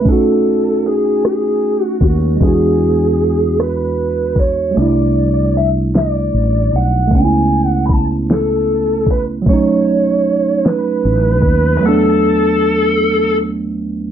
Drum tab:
HH |x-xx-x|x-xx-x|x-xx-x|x-xx-x|
SD |---r--|---r--|---o--|---o--|
BD |o----o|o----o|------|o-o--o|

HH |x-xx-x|------|
SD |---o--|------|
BD |o----o|------|